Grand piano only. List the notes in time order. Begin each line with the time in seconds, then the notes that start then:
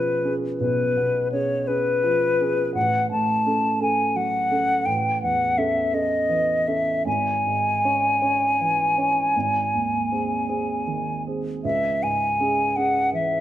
Already playing: B1 B2 F3 C#4 G#4
0.24 C#4 G#4
0.60 B1
0.97 B2
1.33 C#4 G#4
1.68 C#4 G#4
2.04 F3
2.40 C#4 G#4
2.75 A1
3.11 A2
3.46 C#4 A4
3.81 C#4 A4
4.15 F#3
4.51 C#4 A4
4.86 A1
5.23 E2
5.57 C#4 A4
5.93 C#4 A4
6.29 E3
6.67 C#4 A4
7.06 G#1
7.46 G#2
7.84 C#4 C#5
8.22 C#4 C#5
8.61 E3
8.98 C#4 C#5
9.36 G#1
9.75 D#2
10.12 C4 G#4
10.49 C4 G#4
10.87 D#3
11.27 C4 G#4
11.65 C#2
12.03 G#2
12.40 C#4 G#4
12.77 C#4 G#4
13.13 E3